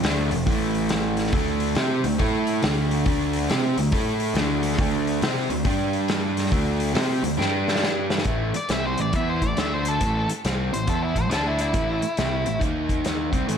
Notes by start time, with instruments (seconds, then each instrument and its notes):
0.03 picked electric bass D2, overdriven electric guitar D3 A3 D4, snare, open hi-hat
0.30 picked electric bass F1, overdriven electric guitar F2 C3, open hi-hat
0.46 picked electric bass A1, overdriven electric guitar A2 E3 A3, kick, open hi-hat
0.74 open hi-hat
0.89 snare, open hi-hat
1.17 snare, open hi-hat
1.27 snare
1.32 picked electric bass D2, overdriven electric guitar D3 A3 D4, kick, open hi-hat
1.60 open hi-hat
1.75 picked electric bass C3, overdriven electric guitar C4 G4 C5, snare, open hi-hat
2.04 picked electric bass D2, overdriven electric guitar D3 A3, open hi-hat
2.19 picked electric bass A2, overdriven electric guitar A3 E4 A4, kick, open hi-hat
2.47 open hi-hat
2.62 picked electric bass D2, overdriven electric guitar D3 A3 D4, snare, open hi-hat
2.91 open hi-hat
3.06 picked electric bass D2, overdriven electric guitar D3 A3 D4, kick, open hi-hat
3.33 open hi-hat
3.49 picked electric bass C3, overdriven electric guitar C4 G4 C5, snare, open hi-hat
3.77 picked electric bass D2, overdriven electric guitar D3 A3, open hi-hat
3.92 picked electric bass A2, overdriven electric guitar A3 E4 A4, kick, open hi-hat
4.20 open hi-hat
4.34 picked electric bass D2, overdriven electric guitar D3 A3, snare, open hi-hat
4.39 overdriven electric guitar D4
4.63 open hi-hat
4.72 snare
4.78 picked electric bass D2, overdriven electric guitar D3 A3 D4, kick, open hi-hat
5.07 open hi-hat
5.22 picked electric bass C3, overdriven electric guitar C4 G4 C5, snare, open hi-hat
5.50 picked electric bass D2, overdriven electric guitar D3 A3, open hi-hat
5.65 picked electric bass G2, overdriven electric guitar G3 D4 G4, kick, open hi-hat
5.93 open hi-hat
6.08 snare, open hi-hat
6.37 snare, open hi-hat
6.46 snare
6.52 picked electric bass D2, overdriven electric guitar D3 A3 D4, kick, open hi-hat
6.80 open hi-hat
6.94 picked electric bass C3, overdriven electric guitar C4 G4 C5, snare, open hi-hat
7.23 picked electric bass D2, overdriven electric guitar D3 A3, open hi-hat
7.37 picked electric bass G2, overdriven electric guitar G3 D4 G4, snare
7.68 snare
7.76 snare
7.83 snare
8.10 snare
8.18 snare
8.24 picked electric bass A1, overdriven electric guitar A2 E3 A3, kick, closed hi-hat
8.54 lead electric guitar D5, muted picked electric bass stroke, muted overdriven electric guitar stroke, closed hi-hat
8.69 picked electric bass C2, overdriven electric guitar C3 G3 C4, lead electric guitar E5, snare, closed hi-hat
8.87 lead electric guitar C5
8.97 picked electric bass A1, overdriven electric guitar A2 E3, lead electric guitar D5, closed hi-hat
9.13 picked electric bass E2, overdriven electric guitar E3 B3 E4, lead electric guitar E5, kick, closed hi-hat
9.29 lead electric guitar C5
9.42 picked electric bass A1, overdriven electric guitar A2 E3, lead electric guitar D5, kick, closed hi-hat
9.56 picked electric bass D2, overdriven electric guitar D3 A3 D4, lead electric guitar E5, snare, closed hi-hat
9.74 lead electric guitar C5
9.85 lead electric guitar A4, closed hi-hat
10.01 picked electric bass A1, overdriven electric guitar A2 E3 A3, kick, closed hi-hat
10.29 muted picked electric bass stroke, muted overdriven electric guitar stroke, closed hi-hat
10.45 picked electric bass C2, overdriven electric guitar C3 G3 C4, snare, closed hi-hat
10.73 picked electric bass A1, overdriven electric guitar A2 E3, lead electric guitar C5, closed hi-hat
10.87 picked electric bass E2, overdriven electric guitar E3 B3 E4, lead electric guitar A4, kick, closed hi-hat
11.03 lead electric guitar E4
11.15 picked electric bass A1, overdriven electric guitar A2 E3, lead electric guitar C5, kick, closed hi-hat
11.29 picked electric bass D2, overdriven electric guitar D3 A3 D4, lead electric guitar A4, snare, closed hi-hat
11.47 lead electric guitar E4
11.59 lead electric guitar E4, closed hi-hat
11.74 picked electric bass A1, overdriven electric guitar A2 E3 A3, kick, closed hi-hat
12.02 muted picked electric bass stroke, muted overdriven electric guitar stroke, closed hi-hat
12.17 picked electric bass C2, overdriven electric guitar C3 G3 C4, snare, closed hi-hat
12.46 picked electric bass A1, overdriven electric guitar A2 E3, closed hi-hat
12.59 picked electric bass D#2, overdriven electric guitar D#3 A#3 D#4, kick, closed hi-hat
12.89 kick, closed hi-hat
13.04 snare, closed hi-hat
13.32 picked electric bass C2, overdriven electric guitar C3 G3 C4, kick, closed hi-hat
13.47 picked electric bass A1, overdriven electric guitar A2 E3 A3, closed hi-hat